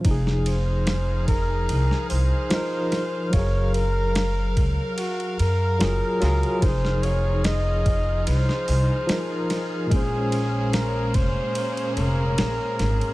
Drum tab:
RD |x-x-x-x-x---x-x-|x-x-x-x-xxx-x-xx|x-x-x-x-x---x-x-|x-x-x-x-xxx-x-xx|
HH |----------o-----|----------------|----------o-----|----------------|
SD |-o--o----o--o-o-|----o-------o-o-|-o--o----o--o-o-|----o-------o-o-|
BD |o-----o---------|o-----o---------|o-----o---------|o-----o---------|